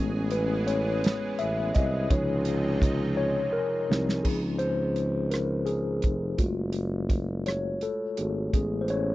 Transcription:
0.00 1.35 A1 loud
0.00 2.09 E3 medium
0.00 1.00 G#3 medium
0.00 4.21 G#3 medium
0.00 1.00 B3 soft
0.00 2.09 B3 medium
0.00 1.00 C#4 medium
0.00 4.21 G#4 medium
0.31 0.65 B4 medium
0.31 closed hi-hat medium
0.67 1.41 C#5 medium
0.67 closed hi-hat medium
1.04 snare loud
1.04 closed hi-hat medium
1.39 1.72 A1 medium
1.39 1.76 E5 loud
1.39 closed hi-hat medium
1.74 2.08 C2 medium
1.74 2.12 D#5 medium
1.74 kick medium
1.74 closed hi-hat soft
2.10 3.59 C#2 loud
2.10 3.14 C3 soft
2.10 4.23 C3 medium
2.10 3.13 F3 medium
2.10 4.23 F3 medium
2.10 4.23 D#4 medium
2.10 3.14 D#4 medium
2.10 3.16 C#5 medium
2.10 kick loud
2.10 closed hi-hat medium
2.45 closed hi-hat medium
2.82 kick medium
2.82 closed hi-hat medium
3.17 3.33 C#5 loud
3.53 4.27 A#4 loud
3.90 4.22 C2 loud
3.90 4.22 F3 soft
3.90 4.22 C4 soft
3.90 4.22 D#4 medium
3.90 snare loud
4.09 snare medium
4.23 6.00 C#2 medium
4.23 6.35 F3 soft
4.23 6.36 C4 soft
4.23 6.36 D#4 soft
4.23 4.40 G#4 medium
4.23 kick medium
4.23 crash medium
4.59 5.33 C5 loud
4.59 closed hi-hat medium
4.96 closed hi-hat soft
5.30 5.47 A#4 medium
5.30 cross-stick medium
5.30 closed hi-hat medium
5.66 6.34 G#4 medium
5.66 closed hi-hat soft
6.02 6.36 F1 medium
6.02 kick medium
6.02 closed hi-hat soft
6.38 7.87 F#1 loud
6.38 6.87 G#3 soft
6.38 6.87 A3 soft
6.38 7.06 F4 medium
6.38 6.87 F#4 medium
6.38 kick medium
6.38 closed hi-hat medium
6.73 closed hi-hat medium
7.10 kick medium
7.10 closed hi-hat soft
7.46 7.83 C#5 medium
7.46 cross-stick loud
7.46 closed hi-hat medium
7.81 8.56 A4 medium
7.81 closed hi-hat soft
8.17 8.50 G#1 medium
8.17 8.50 A3 soft
8.17 8.50 F#4 medium
8.17 8.50 G#4 soft
8.17 closed hi-hat soft
8.53 9.15 A1 loud
8.53 9.15 G#3 soft
8.53 9.15 B3 soft
8.53 9.15 C#4 medium
8.53 8.84 G#4 medium
8.53 kick medium
8.53 closed hi-hat medium
8.81 8.89 C5 medium
8.88 9.15 C#5 loud
8.88 closed hi-hat medium

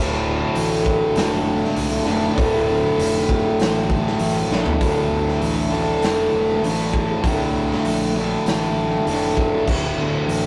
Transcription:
0.00 0.40 D1 medium
0.00 2.08 D2 medium
0.00 2.06 A2 medium
0.00 2.05 D3 medium
0.55 1.00 A1 loud
0.55 open hi-hat medium
0.86 kick medium
1.15 1.61 F1 medium
1.15 snare loud
1.15 open hi-hat medium
1.65 snare soft
1.76 1.99 C2 medium
1.76 open hi-hat medium
2.05 2.29 F1 medium
2.05 2.36 D2 medium
2.05 2.36 A2 medium
2.05 2.39 D3 medium
2.36 2.83 D1 medium
2.36 4.48 D2 medium
2.36 4.49 A2 loud
2.36 4.49 D3 loud
2.36 kick loud
2.36 open hi-hat medium
2.98 3.43 F1 medium
2.98 open hi-hat medium
3.29 kick medium
3.59 4.04 A1 loud
3.59 snare loud
3.59 open hi-hat medium
3.90 kick medium
4.07 snare soft
4.19 4.42 A1 medium
4.19 open hi-hat medium
4.49 4.72 A#1 medium
4.49 4.80 D2 medium
4.49 4.80 A2 medium
4.49 4.79 D3 medium
4.49 snare medium
4.66 floor tom loud
4.81 5.06 D1 medium
4.81 5.73 D2 medium
4.81 5.71 A2 medium
4.81 5.70 D3 loud
4.81 kick loud
4.81 open hi-hat medium
5.10 5.36 G1 medium
5.29 snare soft
5.41 5.91 A1 medium
5.41 open hi-hat medium
5.70 6.62 D2 medium
5.70 6.61 A2 medium
5.70 6.65 D3 medium
6.01 6.26 F1 medium
6.01 snare loud
6.01 open hi-hat medium
6.32 6.57 F1 medium
6.62 7.12 A1 medium
6.62 7.23 D2 medium
6.62 7.23 A2 medium
6.62 7.26 D3 medium
6.62 open hi-hat medium
6.94 kick medium
7.23 7.73 C2 medium
7.23 8.18 D2 medium
7.23 8.13 A2 medium
7.23 8.14 D3 medium
7.23 kick loud
7.23 open hi-hat medium
7.72 snare soft
7.84 8.34 A#1 medium
7.84 open hi-hat medium
8.15 9.05 D2 medium
8.15 9.05 A2 medium
8.15 9.08 D3 medium
8.45 8.95 A1 medium
8.45 snare loud
8.45 open hi-hat medium
9.06 9.55 F1 medium
9.06 9.65 D2 medium
9.06 9.65 A2 medium
9.06 9.67 D3 medium
9.06 open hi-hat medium
9.37 kick loud
9.65 9.92 D1 loud
9.65 10.46 D2 medium
9.65 10.46 A2 medium
9.65 10.46 D3 loud
9.65 kick loud
9.65 crash loud
9.95 10.20 G1 loud
10.26 10.46 A1 loud
10.26 open hi-hat medium

